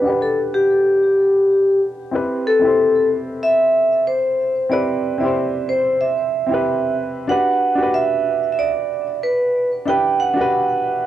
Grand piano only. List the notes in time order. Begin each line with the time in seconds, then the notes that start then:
Already playing: F#4 G4 B4
0.00 D4 F#5
0.06 G4 B4
2.11 C4 E4 G4 B4
2.59 C4 E4
2.64 G4 C5
4.69 C4 E4 G4 B4
5.18 C4 E4
5.23 G4 C5
6.46 C4 E4
6.51 G4 B4
7.27 D4 F#4 G4 B4
7.75 D4 F#4
7.80 G4 B4
9.85 D4 E4 G4 B4
10.34 D4 F#4
10.39 G4 B4